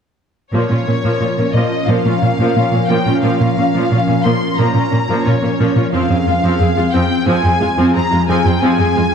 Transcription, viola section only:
0.54 0.69 F3 soft
0.54 0.69 A#3 soft
0.71 0.78 C#4 soft
0.71 0.78 F4 soft
0.87 0.94 A#3 soft
0.87 0.94 C#4 soft
1.04 1.20 F3 soft
1.04 1.20 A#3 soft
1.22 1.28 C#4 soft
1.22 1.29 F4 soft
1.39 1.45 A#3 soft
1.39 1.45 C#4 soft
1.56 1.71 F3 soft
1.56 1.71 A#3 soft
1.89 2.04 F3 soft
1.89 2.04 A#3 soft
2.06 2.13 C#4 soft
2.06 2.13 F4 soft
2.22 2.29 A#3 soft
2.22 2.29 C#4 soft
2.40 2.55 F3 soft
2.40 2.55 A#3 soft
2.57 2.63 C#4 soft
2.57 2.63 F4 soft
2.73 2.80 A#3 soft
2.73 2.79 C#4 soft
2.89 3.05 F3 soft
2.89 3.05 A#3 soft
3.07 3.13 C#4 soft
3.07 3.13 F4 soft
3.24 3.39 F3 soft
3.24 3.39 A#3 soft
3.41 3.48 C#4 soft
3.41 3.48 F4 soft
3.58 3.64 A#3 soft
3.58 3.64 C#4 soft
3.75 3.90 F3 medium
3.75 3.90 A#3 soft
3.92 3.98 C#4 soft
3.92 3.98 F4 soft
4.08 4.15 A#3 soft
4.08 4.15 C#4 soft
4.24 4.40 F3 soft
4.24 4.40 A#3 soft
4.59 4.74 F3 soft
4.59 4.74 A#3 soft
4.76 4.82 C#4 soft
4.76 4.82 F4 soft
4.92 4.99 A#3 soft
4.92 4.98 C#4 soft
5.09 5.24 F3 medium
5.09 5.24 A#3 medium
5.25 5.32 C#4 soft
5.25 5.32 F4 soft
5.42 5.49 A#3 soft
5.42 5.49 C#4 soft
5.59 5.75 F3 soft
5.59 5.75 A#3 soft
5.76 5.83 C#4 soft
5.76 5.83 F4 soft
5.93 6.09 F3 medium
5.93 6.08 C4 medium
6.09 6.16 C4 soft
6.09 6.16 G#4 soft
6.27 6.33 G#3 soft
6.27 6.34 F4 soft
6.43 6.59 F3 medium
6.43 6.59 C4 soft
6.60 6.67 C4 soft
6.60 6.67 G#4 soft
6.77 6.83 G#3 soft
6.77 6.84 F4 soft
6.94 7.09 F3 medium
6.94 7.09 C4 soft
7.27 7.43 F3 medium
7.27 7.43 C4 medium
7.44 7.51 C4 soft
7.44 7.51 G#4 soft
7.61 7.68 G#3 soft
7.61 7.68 F4 soft
7.78 7.94 F3 medium
7.78 7.94 C4 medium
7.95 8.02 C4 soft
7.95 8.02 G#4 soft
8.12 8.19 G#3 soft
8.12 8.19 F4 soft
8.28 8.44 F3 medium
8.28 8.44 C4 medium
8.45 8.52 C4 medium
8.45 8.52 G#4 soft
8.62 8.78 F3 medium
8.62 8.78 C4 medium
8.79 8.86 C4 soft
8.79 8.86 G#4 soft
8.96 9.03 G#3 soft
8.96 9.03 F4 soft

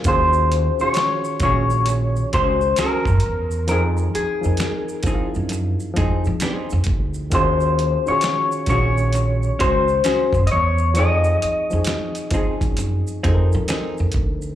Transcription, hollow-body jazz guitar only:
1.43 1.63 C#4 medium
1.43 1.64 F#4 medium
1.43 1.64 G#4 medium
1.88 muted hollow-body jazz guitar stroke soft
2.33 2.44 C4 medium
2.33 2.45 F4 medium
2.33 2.45 G4 medium
2.44 2.59 C#4 medium
2.44 2.59 F#4 medium
2.44 2.59 G#4 medium
2.79 3.04 C#4 medium
2.79 3.05 F#4 medium
2.79 3.05 G#4 medium
5.06 5.26 C4 medium
5.06 5.26 D#4 medium
5.06 5.27 G#4 medium
5.51 muted hollow-body jazz guitar stroke soft
5.96 6.22 C4 medium
5.96 6.23 D#4 medium
5.96 6.23 G#4 medium
6.42 6.53 B3 medium
6.42 6.54 D4 medium
6.42 6.69 G#4 medium
6.53 6.68 C4 medium
6.53 6.68 D#4 medium
8.69 8.89 C#4 medium
8.69 8.90 F#4 medium
8.69 8.90 G#4 medium
9.15 muted hollow-body jazz guitar stroke soft
9.59 9.86 C#4 medium
9.59 9.86 F#4 medium
9.59 9.86 G#4 medium
10.04 10.31 C#4 medium
10.04 10.31 F#4 medium
10.04 10.32 G#4 medium
12.34 12.54 C4 medium
12.34 12.54 D#4 medium
12.34 12.54 G#4 medium
12.78 muted hollow-body jazz guitar stroke soft
13.23 13.50 C4 medium
13.23 13.50 D#4 medium
13.23 13.50 G#4 medium
13.68 13.95 C4 medium
13.68 13.95 D#4 medium
13.68 13.95 G#4 medium

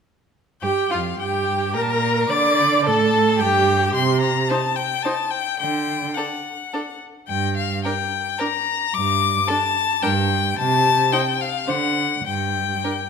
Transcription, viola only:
0.63 0.89 G4 medium
0.92 1.00 F4 soft
1.20 1.77 G4 medium
1.75 2.32 A#4 medium
2.31 2.88 D5 medium
2.87 3.42 A4 medium
3.41 3.95 G4 medium
4.50 4.58 D#4 soft
5.05 5.13 D#4 soft
6.18 6.26 D4 soft
6.73 6.81 D4 soft
7.85 7.93 D4 soft
8.40 8.48 D4 soft
9.50 9.58 D4 soft
10.02 10.10 D4 soft
11.13 11.21 D#4 soft
11.68 11.76 D4 soft
12.84 12.92 D4 soft

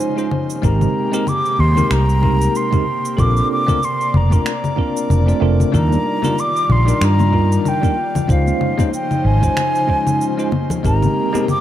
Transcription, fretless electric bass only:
0.63 0.85 G#1 loud
1.59 1.81 D#2 loud
1.91 2.46 C2 loud
3.18 3.40 A#1 medium
4.14 4.36 F1 loud
5.10 5.32 F1 medium
5.42 5.63 F1 medium
5.74 5.95 D#2 loud
6.69 6.91 A#1 medium
7.01 7.57 G2 loud
8.29 8.51 C#2 medium
9.25 9.46 G#1 loud
10.84 11.06 G#1 loud

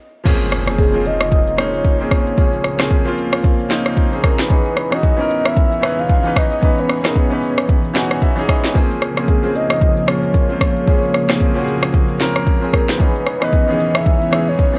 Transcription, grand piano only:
0.24 0.57 F3 medium
0.24 0.58 A#3 medium
0.24 0.58 C4 medium
0.24 0.59 C#4 medium
0.24 0.59 G#4 loud
0.66 0.87 F3 medium
0.66 0.87 A#3 medium
0.66 0.88 C4 medium
0.66 0.88 C#4 medium
0.66 0.89 G#4 medium
0.92 1.46 F3 medium
0.92 1.47 A#3 medium
0.92 1.47 C4 medium
0.92 1.48 C#4 medium
0.92 1.48 F4 medium
1.56 1.90 F3 medium
1.56 1.91 G#3 medium
1.56 1.90 A#3 medium
1.56 1.91 C#4 medium
1.56 1.92 D#4 medium
1.98 2.30 F3 medium
1.98 2.31 A#3 medium
1.98 2.31 C4 medium
1.98 2.32 C#4 medium
1.98 2.32 G#4 medium
2.36 2.70 F3 medium
2.36 2.71 G#3 medium
2.36 2.70 A#3 medium
2.36 2.71 C#4 medium
2.36 2.71 G#4 medium
2.78 2.99 F3 medium
2.78 3.00 A#3 medium
2.78 3.00 C4 medium
2.78 3.01 C#4 medium
2.78 3.01 G#4 loud
3.05 3.59 F3 medium
3.05 3.59 A#3 medium
3.05 3.59 C4 medium
3.05 3.60 C#4 medium
3.05 3.60 F4 loud
3.69 4.02 F3 medium
3.69 4.03 A#3 medium
3.69 4.03 C4 medium
3.69 4.04 C#4 medium
3.69 4.04 D#4 loud
4.11 4.43 F3 medium
4.11 4.43 A#3 medium
4.11 4.44 C4 medium
4.11 4.44 C#4 medium
4.11 4.44 G#4 medium
4.48 4.82 E3 medium
4.48 4.82 B3 medium
4.48 4.83 C#4 medium
4.48 4.83 D#4 medium
4.48 4.84 G#4 medium
4.90 5.12 E3 medium
4.90 5.12 B3 medium
4.90 5.13 C#4 medium
4.90 5.13 D#4 medium
4.90 5.14 F#4 medium
5.17 5.71 E3 medium
5.17 5.71 B3 medium
5.17 5.72 C#4 medium
5.17 5.72 D#4 medium
5.17 5.73 A#4 medium
5.81 6.15 E3 medium
5.81 6.15 B3 medium
5.81 6.16 C#4 medium
5.81 6.16 D#4 medium
5.81 6.17 B4 medium
6.23 6.55 E3 medium
6.23 6.56 B3 medium
6.23 6.56 C#4 medium
6.23 6.56 D#4 medium
6.23 6.57 B4 medium
6.61 6.95 E3 medium
6.61 6.95 B3 medium
6.61 6.95 C#4 medium
6.61 6.96 D#4 medium
6.61 6.96 B4 medium
7.03 7.24 E3 medium
7.03 7.24 B3 medium
7.03 7.25 C#4 medium
7.03 7.25 D#4 medium
7.03 7.26 G#4 medium
7.29 7.83 E3 medium
7.29 7.84 B3 medium
7.29 7.84 C#4 medium
7.29 7.85 D#4 medium
7.29 7.85 B4 medium
7.94 8.27 E3 medium
7.94 8.28 B3 medium
7.94 8.28 C#4 medium
7.94 8.29 D#4 medium
7.94 8.29 F#4 loud
7.94 8.20 G#5 medium
8.22 8.47 E5 medium
8.36 8.67 E3 medium
8.36 8.68 B3 medium
8.36 8.68 C#4 medium
8.36 8.69 D#4 medium
8.36 8.69 G#4 loud
8.48 8.73 D#5 medium
8.73 9.07 F3 medium
8.73 9.07 A#3 medium
8.73 9.08 C4 medium
8.73 9.08 C#4 medium
8.73 9.09 G#4 medium
9.15 9.36 F3 medium
9.15 9.37 A#3 medium
9.15 9.37 C4 medium
9.15 9.38 C#4 medium
9.15 9.38 G#4 medium
9.42 9.96 F3 medium
9.42 9.96 A#3 medium
9.42 9.97 C4 medium
9.42 9.97 C#4 medium
9.42 9.98 G#4 medium
10.06 10.40 F3 medium
10.06 10.41 G#3 medium
10.06 10.40 A#3 medium
10.06 10.41 C#4 medium
10.06 10.42 F4 medium
10.48 10.80 F3 medium
10.48 10.80 A#3 medium
10.48 10.81 C4 medium
10.48 10.81 C#4 medium
10.48 10.82 F4 medium
10.86 11.19 F3 medium
10.86 11.20 G#3 medium
10.86 11.20 A#3 medium
10.86 11.21 C#4 medium
10.86 11.21 G#4 medium
11.28 11.49 F3 medium
11.28 11.49 A#3 medium
11.28 11.50 C4 medium
11.28 11.50 C#4 medium
11.28 11.51 G#4 medium
11.54 12.08 F3 medium
11.54 12.09 A#3 medium
11.54 12.09 C4 medium
11.54 12.09 C#4 medium
11.54 11.62 F#4 medium
11.64 12.13 G#4 loud
12.18 12.52 F3 medium
12.18 12.52 A#3 medium
12.18 12.53 C4 medium
12.18 12.53 C#4 medium
12.18 12.54 A#4 loud
12.60 12.92 F3 medium
12.60 12.93 A#3 medium
12.60 12.93 C4 medium
12.60 12.94 C#4 medium
12.60 12.94 G#4 medium
12.98 13.32 E3 medium
12.98 13.32 B3 medium
12.98 13.32 C#4 medium
12.98 13.33 D#4 medium
12.98 13.33 G#4 medium
13.40 13.61 E3 medium
13.40 13.62 B3 medium
13.40 13.62 C#4 medium
13.40 13.63 D#4 medium
13.40 13.63 B4 medium
13.67 13.73 D#3 medium
13.67 14.21 B3 medium
13.67 14.21 C#4 medium
13.67 14.22 D#4 medium
13.67 14.22 G#4 medium
13.73 14.24 E3 medium
14.31 14.64 E3 medium
14.31 14.65 B3 medium
14.31 14.65 C#4 medium
14.31 14.66 D#4 medium
14.31 14.66 G#4 medium
14.73 14.79 E3 medium
14.73 14.79 B3 medium
14.73 14.79 C#4 medium
14.73 14.79 D#4 medium

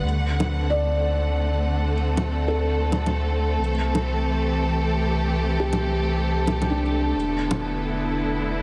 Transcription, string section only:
0.00 3.59 D3 medium
0.00 0.97 B4 medium
0.00 3.60 F#5 medium
0.08 8.62 A3 medium
0.24 7.15 C4 medium
0.38 8.62 A4 medium
3.60 7.15 E3 medium
3.83 8.23 G4 medium
7.15 8.62 D3 medium
7.22 8.62 B3 medium
7.29 8.62 E4 medium

